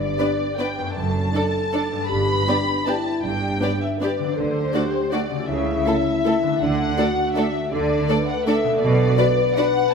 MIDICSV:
0, 0, Header, 1, 8, 480
1, 0, Start_track
1, 0, Tempo, 382653
1, 1207, Time_signature, 3, 2, 24, 8
1, 5028, Tempo, 374065
1, 7908, Tempo, 367197
1, 12728, End_track
2, 0, Start_track
2, 0, Title_t, "Violin section"
2, 0, Program_c, 0, 48
2, 0, Note_on_c, 0, 74, 73
2, 731, Note_off_c, 0, 74, 0
2, 734, Note_on_c, 0, 79, 69
2, 1191, Note_on_c, 0, 81, 79
2, 1203, Note_off_c, 0, 79, 0
2, 2597, Note_off_c, 0, 81, 0
2, 2624, Note_on_c, 0, 83, 90
2, 3590, Note_off_c, 0, 83, 0
2, 3604, Note_on_c, 0, 81, 79
2, 4064, Note_on_c, 0, 79, 75
2, 4066, Note_off_c, 0, 81, 0
2, 4771, Note_off_c, 0, 79, 0
2, 4772, Note_on_c, 0, 76, 65
2, 4871, Note_off_c, 0, 76, 0
2, 5020, Note_on_c, 0, 74, 64
2, 5466, Note_on_c, 0, 72, 79
2, 5480, Note_off_c, 0, 74, 0
2, 6439, Note_on_c, 0, 74, 70
2, 6450, Note_off_c, 0, 72, 0
2, 6904, Note_on_c, 0, 76, 82
2, 6920, Note_off_c, 0, 74, 0
2, 8355, Note_on_c, 0, 78, 89
2, 8360, Note_off_c, 0, 76, 0
2, 9332, Note_on_c, 0, 76, 78
2, 9342, Note_off_c, 0, 78, 0
2, 9805, Note_off_c, 0, 76, 0
2, 9825, Note_on_c, 0, 74, 82
2, 10539, Note_off_c, 0, 74, 0
2, 10554, Note_on_c, 0, 78, 82
2, 10788, Note_on_c, 0, 76, 80
2, 10799, Note_off_c, 0, 78, 0
2, 11237, Note_on_c, 0, 74, 91
2, 11244, Note_off_c, 0, 76, 0
2, 12207, Note_off_c, 0, 74, 0
2, 12211, Note_on_c, 0, 78, 92
2, 12687, Note_on_c, 0, 81, 110
2, 12695, Note_off_c, 0, 78, 0
2, 12728, Note_off_c, 0, 81, 0
2, 12728, End_track
3, 0, Start_track
3, 0, Title_t, "Violin section"
3, 0, Program_c, 1, 48
3, 241, Note_on_c, 1, 71, 43
3, 242, Note_on_c, 1, 74, 42
3, 341, Note_off_c, 1, 71, 0
3, 343, Note_off_c, 1, 74, 0
3, 733, Note_on_c, 1, 74, 42
3, 739, Note_on_c, 1, 71, 41
3, 833, Note_off_c, 1, 74, 0
3, 840, Note_off_c, 1, 71, 0
3, 1692, Note_on_c, 1, 69, 45
3, 1694, Note_on_c, 1, 74, 44
3, 1793, Note_off_c, 1, 69, 0
3, 1795, Note_off_c, 1, 74, 0
3, 2171, Note_on_c, 1, 69, 42
3, 2175, Note_on_c, 1, 74, 42
3, 2272, Note_off_c, 1, 69, 0
3, 2276, Note_off_c, 1, 74, 0
3, 3112, Note_on_c, 1, 67, 44
3, 3116, Note_on_c, 1, 74, 47
3, 3212, Note_off_c, 1, 67, 0
3, 3216, Note_off_c, 1, 74, 0
3, 3606, Note_on_c, 1, 67, 45
3, 3606, Note_on_c, 1, 74, 41
3, 3706, Note_off_c, 1, 74, 0
3, 3707, Note_off_c, 1, 67, 0
3, 4551, Note_on_c, 1, 67, 47
3, 4553, Note_on_c, 1, 74, 47
3, 4651, Note_off_c, 1, 67, 0
3, 4653, Note_off_c, 1, 74, 0
3, 5049, Note_on_c, 1, 74, 46
3, 5050, Note_on_c, 1, 67, 46
3, 5151, Note_off_c, 1, 74, 0
3, 5153, Note_off_c, 1, 67, 0
3, 5970, Note_on_c, 1, 74, 48
3, 5972, Note_on_c, 1, 66, 47
3, 6073, Note_off_c, 1, 74, 0
3, 6075, Note_off_c, 1, 66, 0
3, 6460, Note_on_c, 1, 74, 45
3, 6461, Note_on_c, 1, 66, 47
3, 6563, Note_off_c, 1, 74, 0
3, 6564, Note_off_c, 1, 66, 0
3, 7417, Note_on_c, 1, 69, 44
3, 7418, Note_off_c, 1, 69, 0
3, 7418, Note_on_c, 1, 69, 50
3, 7521, Note_off_c, 1, 69, 0
3, 7909, Note_on_c, 1, 69, 47
3, 7916, Note_off_c, 1, 69, 0
3, 7916, Note_on_c, 1, 69, 48
3, 8020, Note_off_c, 1, 69, 0
3, 8866, Note_on_c, 1, 74, 48
3, 8869, Note_on_c, 1, 69, 50
3, 8970, Note_off_c, 1, 74, 0
3, 8973, Note_off_c, 1, 69, 0
3, 9352, Note_on_c, 1, 69, 47
3, 9360, Note_on_c, 1, 74, 46
3, 9456, Note_off_c, 1, 69, 0
3, 9465, Note_off_c, 1, 74, 0
3, 10316, Note_on_c, 1, 74, 54
3, 10319, Note_on_c, 1, 69, 53
3, 10421, Note_off_c, 1, 74, 0
3, 10423, Note_off_c, 1, 69, 0
3, 10817, Note_on_c, 1, 69, 53
3, 10817, Note_on_c, 1, 74, 54
3, 10921, Note_off_c, 1, 69, 0
3, 10922, Note_off_c, 1, 74, 0
3, 11736, Note_on_c, 1, 71, 52
3, 11740, Note_on_c, 1, 74, 53
3, 11841, Note_off_c, 1, 71, 0
3, 11844, Note_off_c, 1, 74, 0
3, 12246, Note_on_c, 1, 71, 51
3, 12246, Note_on_c, 1, 74, 55
3, 12351, Note_off_c, 1, 71, 0
3, 12351, Note_off_c, 1, 74, 0
3, 12728, End_track
4, 0, Start_track
4, 0, Title_t, "French horn section"
4, 0, Program_c, 2, 60
4, 216, Note_on_c, 2, 67, 53
4, 694, Note_off_c, 2, 67, 0
4, 719, Note_on_c, 2, 71, 60
4, 1182, Note_on_c, 2, 69, 55
4, 1196, Note_off_c, 2, 71, 0
4, 1645, Note_off_c, 2, 69, 0
4, 1660, Note_on_c, 2, 69, 61
4, 2605, Note_off_c, 2, 69, 0
4, 2624, Note_on_c, 2, 67, 58
4, 3087, Note_on_c, 2, 62, 53
4, 3089, Note_off_c, 2, 67, 0
4, 3576, Note_off_c, 2, 62, 0
4, 3581, Note_on_c, 2, 64, 54
4, 4055, Note_off_c, 2, 64, 0
4, 4058, Note_on_c, 2, 62, 60
4, 5015, Note_on_c, 2, 71, 59
4, 5025, Note_off_c, 2, 62, 0
4, 5480, Note_on_c, 2, 69, 60
4, 5486, Note_off_c, 2, 71, 0
4, 5952, Note_off_c, 2, 69, 0
4, 5957, Note_on_c, 2, 67, 59
4, 6458, Note_off_c, 2, 67, 0
4, 6464, Note_on_c, 2, 66, 56
4, 6916, Note_on_c, 2, 64, 64
4, 6932, Note_off_c, 2, 66, 0
4, 8337, Note_off_c, 2, 64, 0
4, 8370, Note_on_c, 2, 62, 62
4, 8850, Note_off_c, 2, 62, 0
4, 8852, Note_on_c, 2, 66, 68
4, 9806, Note_off_c, 2, 66, 0
4, 9829, Note_on_c, 2, 69, 70
4, 10306, Note_off_c, 2, 69, 0
4, 10310, Note_on_c, 2, 71, 71
4, 10787, Note_on_c, 2, 69, 74
4, 10801, Note_off_c, 2, 71, 0
4, 11728, Note_off_c, 2, 69, 0
4, 11745, Note_on_c, 2, 71, 87
4, 12728, Note_off_c, 2, 71, 0
4, 12728, End_track
5, 0, Start_track
5, 0, Title_t, "Harp"
5, 0, Program_c, 3, 46
5, 0, Note_on_c, 3, 43, 44
5, 0, Note_on_c, 3, 59, 35
5, 0, Note_on_c, 3, 62, 37
5, 0, Note_on_c, 3, 71, 33
5, 0, Note_on_c, 3, 74, 38
5, 979, Note_on_c, 3, 42, 49
5, 1034, Note_on_c, 3, 57, 38
5, 1076, Note_off_c, 3, 62, 0
5, 1091, Note_on_c, 3, 62, 37
5, 1111, Note_off_c, 3, 43, 0
5, 1133, Note_off_c, 3, 74, 0
5, 1138, Note_off_c, 3, 59, 0
5, 1148, Note_on_c, 3, 74, 37
5, 1225, Note_off_c, 3, 71, 0
5, 2410, Note_on_c, 3, 43, 48
5, 2466, Note_on_c, 3, 55, 38
5, 2509, Note_off_c, 3, 62, 0
5, 2524, Note_on_c, 3, 62, 39
5, 2537, Note_off_c, 3, 42, 0
5, 2565, Note_off_c, 3, 57, 0
5, 2578, Note_on_c, 3, 71, 37
5, 5260, Note_on_c, 3, 50, 48
5, 5318, Note_on_c, 3, 54, 41
5, 5362, Note_off_c, 3, 62, 0
5, 5377, Note_on_c, 3, 62, 41
5, 5396, Note_off_c, 3, 43, 0
5, 5425, Note_off_c, 3, 55, 0
5, 5436, Note_on_c, 3, 69, 38
5, 5481, Note_off_c, 3, 74, 0
5, 5483, Note_off_c, 3, 71, 0
5, 6686, Note_on_c, 3, 49, 51
5, 6745, Note_on_c, 3, 57, 40
5, 6800, Note_on_c, 3, 64, 42
5, 6833, Note_off_c, 3, 50, 0
5, 6843, Note_off_c, 3, 69, 0
5, 6859, Note_on_c, 3, 69, 44
5, 6862, Note_off_c, 3, 54, 0
5, 6892, Note_off_c, 3, 62, 0
5, 8137, Note_on_c, 3, 50, 53
5, 8179, Note_off_c, 3, 57, 0
5, 8194, Note_on_c, 3, 57, 43
5, 8253, Note_on_c, 3, 62, 44
5, 8267, Note_off_c, 3, 49, 0
5, 8297, Note_off_c, 3, 69, 0
5, 8313, Note_on_c, 3, 69, 41
5, 8325, Note_off_c, 3, 64, 0
5, 11025, Note_on_c, 3, 47, 59
5, 11071, Note_off_c, 3, 62, 0
5, 11086, Note_on_c, 3, 62, 46
5, 11145, Note_on_c, 3, 66, 43
5, 11157, Note_off_c, 3, 50, 0
5, 11202, Note_on_c, 3, 71, 45
5, 12728, Note_off_c, 3, 47, 0
5, 12728, Note_off_c, 3, 57, 0
5, 12728, Note_off_c, 3, 62, 0
5, 12728, Note_off_c, 3, 66, 0
5, 12728, Note_off_c, 3, 69, 0
5, 12728, Note_off_c, 3, 71, 0
5, 12728, End_track
6, 0, Start_track
6, 0, Title_t, "Viola section"
6, 0, Program_c, 4, 48
6, 241, Note_on_c, 4, 59, 43
6, 246, Note_on_c, 4, 62, 45
6, 342, Note_off_c, 4, 59, 0
6, 346, Note_off_c, 4, 62, 0
6, 740, Note_on_c, 4, 59, 40
6, 741, Note_on_c, 4, 62, 40
6, 840, Note_off_c, 4, 59, 0
6, 841, Note_off_c, 4, 62, 0
6, 1676, Note_on_c, 4, 62, 44
6, 1683, Note_off_c, 4, 62, 0
6, 1683, Note_on_c, 4, 62, 45
6, 1783, Note_off_c, 4, 62, 0
6, 2176, Note_on_c, 4, 62, 42
6, 2177, Note_off_c, 4, 62, 0
6, 2177, Note_on_c, 4, 62, 46
6, 2277, Note_off_c, 4, 62, 0
6, 3115, Note_on_c, 4, 62, 49
6, 3117, Note_on_c, 4, 59, 48
6, 3215, Note_off_c, 4, 62, 0
6, 3217, Note_off_c, 4, 59, 0
6, 3592, Note_on_c, 4, 62, 43
6, 3596, Note_on_c, 4, 59, 43
6, 3693, Note_off_c, 4, 62, 0
6, 3697, Note_off_c, 4, 59, 0
6, 4536, Note_on_c, 4, 62, 50
6, 4537, Note_on_c, 4, 59, 49
6, 4637, Note_off_c, 4, 59, 0
6, 4637, Note_off_c, 4, 62, 0
6, 5026, Note_on_c, 4, 59, 45
6, 5027, Note_on_c, 4, 62, 42
6, 5128, Note_off_c, 4, 59, 0
6, 5129, Note_off_c, 4, 62, 0
6, 5968, Note_on_c, 4, 57, 49
6, 5970, Note_on_c, 4, 62, 45
6, 6070, Note_off_c, 4, 57, 0
6, 6072, Note_off_c, 4, 62, 0
6, 6459, Note_on_c, 4, 57, 47
6, 6460, Note_on_c, 4, 62, 45
6, 6562, Note_off_c, 4, 57, 0
6, 6563, Note_off_c, 4, 62, 0
6, 7411, Note_on_c, 4, 57, 48
6, 7413, Note_on_c, 4, 64, 46
6, 7514, Note_off_c, 4, 57, 0
6, 7516, Note_off_c, 4, 64, 0
6, 7909, Note_on_c, 4, 57, 50
6, 7909, Note_on_c, 4, 64, 43
6, 8014, Note_off_c, 4, 57, 0
6, 8014, Note_off_c, 4, 64, 0
6, 8848, Note_on_c, 4, 62, 51
6, 8855, Note_on_c, 4, 57, 50
6, 8952, Note_off_c, 4, 62, 0
6, 8960, Note_off_c, 4, 57, 0
6, 9353, Note_on_c, 4, 62, 49
6, 9359, Note_on_c, 4, 57, 51
6, 9458, Note_off_c, 4, 62, 0
6, 9464, Note_off_c, 4, 57, 0
6, 10312, Note_on_c, 4, 62, 53
6, 10314, Note_on_c, 4, 57, 51
6, 10416, Note_off_c, 4, 62, 0
6, 10419, Note_off_c, 4, 57, 0
6, 10799, Note_on_c, 4, 57, 50
6, 10804, Note_on_c, 4, 62, 48
6, 10904, Note_off_c, 4, 57, 0
6, 10908, Note_off_c, 4, 62, 0
6, 11734, Note_on_c, 4, 62, 53
6, 11734, Note_on_c, 4, 66, 55
6, 11838, Note_off_c, 4, 66, 0
6, 11839, Note_off_c, 4, 62, 0
6, 12243, Note_on_c, 4, 62, 52
6, 12244, Note_on_c, 4, 66, 50
6, 12348, Note_off_c, 4, 62, 0
6, 12348, Note_off_c, 4, 66, 0
6, 12728, End_track
7, 0, Start_track
7, 0, Title_t, "Cello section"
7, 0, Program_c, 5, 48
7, 0, Note_on_c, 5, 43, 54
7, 150, Note_off_c, 5, 43, 0
7, 1215, Note_on_c, 5, 42, 56
7, 1601, Note_off_c, 5, 42, 0
7, 2635, Note_on_c, 5, 43, 61
7, 3022, Note_off_c, 5, 43, 0
7, 4064, Note_on_c, 5, 43, 60
7, 4453, Note_off_c, 5, 43, 0
7, 5489, Note_on_c, 5, 50, 57
7, 5884, Note_off_c, 5, 50, 0
7, 6927, Note_on_c, 5, 49, 62
7, 7322, Note_off_c, 5, 49, 0
7, 8383, Note_on_c, 5, 50, 64
7, 8772, Note_off_c, 5, 50, 0
7, 9834, Note_on_c, 5, 50, 69
7, 10226, Note_off_c, 5, 50, 0
7, 11267, Note_on_c, 5, 47, 67
7, 11654, Note_off_c, 5, 47, 0
7, 12728, End_track
8, 0, Start_track
8, 0, Title_t, "Double bass section"
8, 0, Program_c, 6, 48
8, 0, Note_on_c, 6, 31, 58
8, 149, Note_off_c, 6, 31, 0
8, 1206, Note_on_c, 6, 30, 56
8, 1596, Note_off_c, 6, 30, 0
8, 2629, Note_on_c, 6, 31, 60
8, 3019, Note_off_c, 6, 31, 0
8, 4058, Note_on_c, 6, 31, 58
8, 4450, Note_off_c, 6, 31, 0
8, 5483, Note_on_c, 6, 38, 61
8, 5881, Note_off_c, 6, 38, 0
8, 6921, Note_on_c, 6, 37, 60
8, 7319, Note_off_c, 6, 37, 0
8, 8371, Note_on_c, 6, 38, 67
8, 8766, Note_off_c, 6, 38, 0
8, 9829, Note_on_c, 6, 38, 67
8, 10223, Note_off_c, 6, 38, 0
8, 11255, Note_on_c, 6, 35, 73
8, 11648, Note_off_c, 6, 35, 0
8, 12728, End_track
0, 0, End_of_file